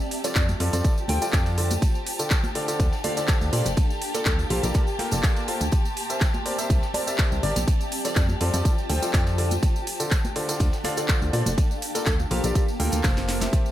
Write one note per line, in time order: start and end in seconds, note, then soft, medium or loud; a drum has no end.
0.00 0.65 C4 medium
0.00 2.51 F4 medium
0.00 0.65 G4 medium
0.00 13.51 G4 medium
0.00 0.65 D5 medium
0.00 0.65 E5 medium
0.00 13.52 A5 medium
0.00 tambourine soft
0.11 open hi-hat loud
0.11 ride medium
0.18 2.51 C5 medium
0.24 0.35 F3 medium
0.24 0.35 F4 medium
0.24 0.35 A4 medium
0.24 0.35 C5 medium
0.24 0.35 D5 medium
0.24 0.45 D5 medium
0.24 closed hi-hat medium
0.24 ride soft
0.24 tambourine medium
0.34 0.54 F2 loud
0.34 2.51 A5 medium
0.34 kick loud
0.34 snare loud
0.34 clap loud
0.34 closed hi-hat medium
0.34 ride medium
0.34 tambourine medium
0.48 tambourine soft
0.48 high conga loud
0.60 0.70 F2 medium
0.60 0.70 F3 medium
0.60 0.70 F4 medium
0.60 0.70 A4 medium
0.60 0.70 C5 medium
0.60 0.70 D5 medium
0.60 2.50 G5 medium
0.60 open hi-hat loud
0.60 ride medium
0.73 0.82 F2 loud
0.73 0.91 F3 medium
0.73 0.91 F4 medium
0.73 0.91 A4 medium
0.73 0.91 C5 medium
0.73 0.91 D5 loud
0.73 closed hi-hat medium
0.73 tambourine medium
0.84 kick loud
0.84 closed hi-hat medium
0.84 ride medium
0.84 tambourine medium
0.97 tambourine soft
1.08 1.19 D2 loud
1.08 1.20 F3 medium
1.08 1.20 F4 medium
1.08 1.20 A4 medium
1.08 1.20 C5 medium
1.08 1.19 G5 medium
1.08 1.20 G5 medium
1.08 open hi-hat loud
1.08 ride medium
1.08 high conga medium
1.22 1.55 F3 medium
1.22 1.55 F4 medium
1.22 1.55 A4 medium
1.22 1.55 C5 medium
1.22 1.55 D5 medium
1.22 1.29 G5 medium
1.22 closed hi-hat medium
1.22 tambourine medium
1.33 1.77 F2 loud
1.33 1.42 G5 medium
1.33 kick loud
1.33 snare loud
1.33 clap loud
1.33 closed hi-hat medium
1.33 ride medium
1.33 tambourine medium
1.46 ride soft
1.46 tambourine soft
1.58 1.70 D3 medium
1.58 1.70 F4 medium
1.58 1.70 A4 medium
1.58 1.70 C5 medium
1.58 1.70 D5 medium
1.58 open hi-hat loud
1.58 ride medium
1.71 closed hi-hat medium
1.71 tambourine medium
1.71 high conga medium
1.82 4.41 D4 medium
1.82 kick loud
1.82 closed hi-hat medium
1.82 ride medium
1.82 tambourine medium
1.94 tambourine soft
2.01 5.72 F5 medium
2.06 open hi-hat loud
2.06 ride medium
2.19 2.30 D3 medium
2.19 2.30 F4 medium
2.19 2.30 A4 medium
2.19 2.30 C5 medium
2.19 2.30 D5 medium
2.19 closed hi-hat medium
2.19 tambourine medium
2.30 kick loud
2.30 snare loud
2.30 clap loud
2.30 closed hi-hat medium
2.30 ride medium
2.30 tambourine medium
2.44 tambourine soft
2.44 high conga medium
2.55 2.65 D3 medium
2.55 2.65 F4 medium
2.55 2.65 A4 medium
2.55 2.65 C5 medium
2.55 2.65 D5 loud
2.55 open hi-hat loud
2.55 ride medium
2.68 2.87 D3 medium
2.68 2.87 F4 medium
2.68 2.87 A4 medium
2.68 2.87 C5 medium
2.68 2.87 D5 loud
2.68 closed hi-hat medium
2.68 tambourine medium
2.80 2.89 D2 loud
2.80 kick loud
2.80 closed hi-hat medium
2.80 ride medium
2.80 tambourine medium
2.93 snare soft
2.93 tambourine soft
3.04 3.15 D3 medium
3.04 3.15 F4 medium
3.04 3.15 A4 medium
3.04 3.15 C5 medium
3.04 3.12 D5 medium
3.04 3.15 F5 medium
3.04 open hi-hat loud
3.04 ride medium
3.04 high conga medium
3.17 3.50 D3 medium
3.17 3.50 F4 medium
3.17 3.50 A4 medium
3.17 3.50 C5 medium
3.17 3.50 D5 loud
3.17 3.24 D5 medium
3.17 closed hi-hat medium
3.17 tambourine medium
3.28 kick loud
3.28 snare loud
3.28 clap loud
3.28 closed hi-hat medium
3.28 ride medium
3.28 tambourine medium
3.41 3.50 D2 medium
3.41 tambourine soft
3.53 3.62 A#2 loud
3.53 3.65 A#3 medium
3.53 6.39 A#3 medium
3.53 3.65 F4 medium
3.53 3.65 A4 medium
3.53 3.65 A#4 medium
3.53 3.65 C5 medium
3.53 3.74 D5 medium
3.53 open hi-hat loud
3.53 ride medium
3.66 3.74 F1 medium
3.66 snare soft
3.66 closed hi-hat medium
3.66 tambourine medium
3.66 high conga loud
3.73 6.51 C6 medium
3.77 kick loud
3.77 closed hi-hat soft
3.77 ride medium
3.77 tambourine medium
3.90 tambourine soft
4.02 open hi-hat loud
4.02 ride medium
4.14 4.26 A#3 medium
4.14 4.26 F4 medium
4.14 4.26 A4 medium
4.14 4.22 A4 medium
4.14 4.26 A#4 medium
4.14 4.26 D5 medium
4.14 closed hi-hat medium
4.14 ride soft
4.14 tambourine medium
4.25 4.44 D2 loud
4.25 4.34 A4 medium
4.25 kick loud
4.25 snare loud
4.25 clap loud
4.25 closed hi-hat medium
4.25 ride medium
4.25 tambourine medium
4.37 6.51 D6 loud
4.37 tambourine soft
4.37 high conga medium
4.50 4.60 A#1 medium
4.50 4.60 A#3 medium
4.50 4.60 F4 medium
4.50 4.99 G4 loud
4.50 4.60 A4 medium
4.50 4.60 A#4 medium
4.50 4.60 C5 loud
4.50 open hi-hat medium
4.50 ride medium
4.63 4.72 A#1 loud
4.63 4.82 A#3 medium
4.63 4.82 F4 medium
4.63 4.82 A4 medium
4.63 4.82 A#4 medium
4.63 4.82 D5 loud
4.63 closed hi-hat medium
4.63 tambourine medium
4.74 kick loud
4.74 closed hi-hat medium
4.74 ride medium
4.74 tambourine medium
4.87 tambourine soft
4.99 5.10 A#3 medium
4.99 5.10 F4 medium
4.99 5.10 A4 medium
4.99 5.10 A#4 medium
4.99 5.10 G5 medium
4.99 open hi-hat loud
4.99 ride medium
4.99 high conga medium
5.11 5.21 F1 loud
5.11 5.45 A#3 medium
5.11 5.45 F4 medium
5.11 5.45 A4 medium
5.11 5.45 A#4 medium
5.11 5.45 D5 medium
5.11 closed hi-hat medium
5.11 tambourine medium
5.23 kick loud
5.23 snare loud
5.23 clap loud
5.23 closed hi-hat medium
5.23 ride medium
5.23 tambourine medium
5.36 ride soft
5.36 tambourine soft
5.48 5.60 F4 medium
5.48 5.60 A4 medium
5.48 5.60 A#4 medium
5.48 5.60 C5 medium
5.48 open hi-hat loud
5.48 ride medium
5.61 5.69 D2 loud
5.61 closed hi-hat medium
5.61 tambourine medium
5.61 high conga medium
5.72 8.46 C4 medium
5.72 kick loud
5.72 closed hi-hat medium
5.72 ride medium
5.72 tambourine medium
5.85 tambourine soft
5.97 open hi-hat loud
5.97 ride medium
6.02 8.46 G4 medium
6.10 6.21 C4 medium
6.10 6.21 G4 medium
6.10 6.21 A#4 medium
6.10 6.21 C5 medium
6.10 6.21 E5 medium
6.10 closed hi-hat medium
6.10 tambourine medium
6.16 8.46 E5 medium
6.21 kick loud
6.21 snare loud
6.21 clap loud
6.21 closed hi-hat medium
6.21 ride medium
6.21 tambourine medium
6.34 tambourine soft
6.34 high conga medium
6.45 6.55 C4 medium
6.45 6.55 G4 medium
6.45 6.55 A#4 medium
6.45 6.55 C5 medium
6.45 6.55 D5 loud
6.45 open hi-hat medium
6.45 ride medium
6.57 6.77 C4 medium
6.57 6.77 G4 medium
6.57 6.77 A#4 medium
6.57 6.77 C5 medium
6.57 8.43 D5 medium
6.57 6.77 E5 loud
6.57 closed hi-hat medium
6.57 tambourine medium
6.70 6.80 C2 loud
6.70 kick loud
6.70 closed hi-hat medium
6.70 ride medium
6.70 tambourine medium
6.83 snare soft
6.83 tambourine soft
6.94 7.05 C4 medium
6.94 7.05 G4 medium
6.94 7.05 A#4 medium
6.94 7.05 C5 medium
6.94 7.03 D5 medium
6.94 7.05 A5 medium
6.94 open hi-hat loud
6.94 ride medium
6.94 high conga medium
7.07 7.40 C4 medium
7.07 7.40 G4 medium
7.07 7.40 A#4 medium
7.07 7.40 C5 medium
7.07 7.15 D5 medium
7.07 7.40 E5 medium
7.07 closed hi-hat medium
7.07 tambourine medium
7.18 kick loud
7.18 snare loud
7.18 clap loud
7.18 closed hi-hat medium
7.18 ride medium
7.18 tambourine medium
7.32 7.40 C2 medium
7.32 tambourine soft
7.43 7.53 G1 loud
7.43 7.55 G4 medium
7.43 7.55 A#4 medium
7.43 7.55 C5 medium
7.43 7.64 D5 medium
7.43 7.55 D5 medium
7.43 open hi-hat loud
7.43 ride medium
7.56 7.65 A#1 medium
7.56 snare soft
7.56 closed hi-hat medium
7.56 tambourine medium
7.56 high conga medium
7.68 10.30 F4 medium
7.68 kick loud
7.68 closed hi-hat medium
7.68 ride medium
7.68 tambourine medium
7.81 10.31 C5 medium
7.81 tambourine soft
7.92 10.31 G5 medium
7.92 open hi-hat loud
7.92 ride medium
8.05 8.16 F3 medium
8.05 8.16 F4 medium
8.05 8.16 A4 medium
8.05 8.16 C5 medium
8.05 8.26 D5 medium
8.05 8.16 D5 medium
8.05 closed hi-hat medium
8.05 ride soft
8.05 tambourine medium
8.16 8.35 F2 loud
8.16 kick loud
8.16 snare loud
8.16 clap loud
8.16 closed hi-hat medium
8.16 ride medium
8.16 tambourine medium
8.29 tambourine soft
8.29 high conga medium
8.41 8.50 F2 medium
8.41 8.51 F3 medium
8.41 8.51 F4 medium
8.41 8.51 A4 medium
8.41 8.51 C5 medium
8.41 8.51 D5 loud
8.41 open hi-hat medium
8.41 ride medium
8.50 8.72 F3 medium
8.50 8.72 F4 medium
8.50 8.72 A4 medium
8.50 8.72 C5 medium
8.50 8.72 D5 loud
8.50 10.31 A5 medium
8.54 8.62 F2 loud
8.54 closed hi-hat medium
8.54 tambourine medium
8.65 kick loud
8.65 closed hi-hat medium
8.65 ride medium
8.65 tambourine medium
8.78 tambourine soft
8.89 8.99 D2 loud
8.89 9.00 F3 medium
8.89 9.00 F4 medium
8.89 9.00 A4 medium
8.89 9.00 C5 medium
8.89 9.00 G5 medium
8.89 open hi-hat loud
8.89 ride medium
8.89 high conga medium
9.02 9.35 F3 medium
9.02 9.35 F4 medium
9.02 9.35 A4 medium
9.02 9.35 C5 medium
9.02 9.35 D5 loud
9.02 9.10 G5 medium
9.02 closed hi-hat medium
9.02 tambourine medium
9.13 9.58 F2 medium
9.13 9.22 G5 medium
9.13 kick loud
9.13 snare loud
9.13 clap loud
9.13 closed hi-hat medium
9.13 ride medium
9.13 tambourine medium
9.27 ride soft
9.27 tambourine soft
9.38 9.51 D3 medium
9.38 9.51 F4 medium
9.38 9.51 A4 medium
9.38 9.51 C5 medium
9.38 9.51 D5 medium
9.38 open hi-hat medium
9.38 ride medium
9.51 closed hi-hat medium
9.51 tambourine medium
9.51 high conga medium
9.63 12.22 D4 medium
9.63 kick loud
9.63 closed hi-hat medium
9.63 ride medium
9.63 tambourine medium
9.76 tambourine soft
9.80 13.53 F5 medium
9.87 open hi-hat loud
9.87 ride medium
10.00 10.11 D3 medium
10.00 10.11 F4 medium
10.00 10.11 A4 medium
10.00 10.11 C5 medium
10.00 10.11 D5 medium
10.00 closed hi-hat medium
10.00 tambourine medium
10.11 kick loud
10.11 snare loud
10.11 clap loud
10.11 closed hi-hat medium
10.11 ride medium
10.11 tambourine medium
10.25 tambourine soft
10.25 high conga medium
10.36 10.46 D3 medium
10.36 10.46 F4 medium
10.36 10.46 A4 medium
10.36 10.46 C5 medium
10.36 10.46 D5 medium
10.36 open hi-hat medium
10.36 ride medium
10.49 10.67 D3 medium
10.49 10.67 F4 medium
10.49 10.67 A4 medium
10.49 10.67 C5 medium
10.49 10.67 D5 loud
10.49 closed hi-hat medium
10.49 tambourine medium
10.60 10.70 D2 loud
10.60 kick loud
10.60 closed hi-hat medium
10.60 ride medium
10.60 tambourine medium
10.73 snare soft
10.73 tambourine soft
10.84 10.96 D3 medium
10.84 10.96 F4 medium
10.84 10.96 A4 medium
10.84 10.96 C5 medium
10.84 10.93 D5 medium
10.84 10.96 F5 medium
10.84 snare loud
10.84 open hi-hat loud
10.84 ride medium
10.84 high conga medium
10.97 11.31 D3 medium
10.97 11.31 F4 medium
10.97 11.31 A4 medium
10.97 11.31 C5 medium
10.97 11.05 D5 medium
10.97 11.31 D5 loud
10.97 closed hi-hat medium
10.97 tambourine medium
11.08 kick loud
11.08 clap loud
11.08 closed hi-hat medium
11.08 ride medium
11.08 tambourine medium
11.22 11.30 D2 medium
11.22 tambourine soft
11.33 11.43 A#2 loud
11.33 11.46 A#3 medium
11.33 13.71 A#3 medium
11.33 11.46 F4 medium
11.33 11.46 A4 medium
11.33 11.46 A#4 medium
11.33 11.46 C5 medium
11.33 11.55 D5 loud
11.33 open hi-hat medium
11.33 ride medium
11.46 11.55 F1 medium
11.46 snare soft
11.46 closed hi-hat medium
11.46 tambourine medium
11.46 high conga medium
11.58 13.71 C6 medium
11.58 kick loud
11.58 closed hi-hat medium
11.58 ride medium
11.58 tambourine medium
11.71 tambourine soft
11.82 open hi-hat loud
11.82 ride medium
11.95 12.06 A#3 medium
11.95 12.06 F4 medium
11.95 12.02 A4 medium
11.95 12.06 A4 medium
11.95 12.06 A#4 medium
11.95 12.06 D5 medium
11.95 closed hi-hat medium
11.95 ride soft
11.95 tambourine medium
12.06 12.25 D2 loud
12.06 12.15 A4 medium
12.06 kick loud
12.06 snare loud
12.06 clap loud
12.06 closed hi-hat medium
12.06 ride medium
12.06 tambourine medium
12.19 tambourine soft
12.19 high conga medium
12.31 12.40 A#1 medium
12.31 12.41 A#3 medium
12.31 12.41 F4 medium
12.31 12.80 G4 medium
12.31 12.41 A4 medium
12.31 12.41 A#4 medium
12.31 12.41 C5 medium
12.31 13.71 D6 medium
12.31 open hi-hat medium
12.31 ride medium
12.44 12.52 A#1 loud
12.44 12.62 A#3 medium
12.44 12.62 F4 medium
12.44 12.62 A4 medium
12.44 12.62 A#4 medium
12.44 12.62 D5 loud
12.44 closed hi-hat medium
12.44 tambourine medium
12.55 kick loud
12.55 closed hi-hat medium
12.55 ride medium
12.55 tambourine medium
12.68 tambourine soft
12.80 12.89 D2 medium
12.80 13.01 A#3 loud
12.80 13.01 F4 medium
12.80 13.01 A4 medium
12.80 13.01 A#4 loud
12.80 13.01 G5 loud
12.80 open hi-hat loud
12.80 high conga medium
12.92 13.01 D2 medium
12.92 closed hi-hat medium
12.92 tambourine medium
13.04 13.48 F1 medium
13.04 13.38 A#3 medium
13.04 13.38 F4 medium
13.04 13.38 A4 medium
13.04 13.38 A#4 medium
13.04 13.38 C5 loud
13.04 kick loud
13.04 snare medium
13.04 snare loud
13.04 clap loud
13.04 closed hi-hat medium
13.04 ride medium
13.04 tambourine medium
13.17 snare medium
13.17 tambourine soft
13.29 snare medium
13.29 open hi-hat medium
13.29 ride medium
13.41 13.71 C4 medium
13.41 13.71 G4 medium
13.41 13.71 A#4 medium
13.41 13.71 C5 medium
13.41 13.71 E5 medium
13.41 snare medium
13.41 closed hi-hat medium
13.41 tambourine medium
13.41 high conga medium
13.53 13.71 G4 medium
13.53 13.71 A5 medium
13.53 kick loud
13.53 closed hi-hat medium
13.53 ride medium
13.53 tambourine medium
13.66 tambourine soft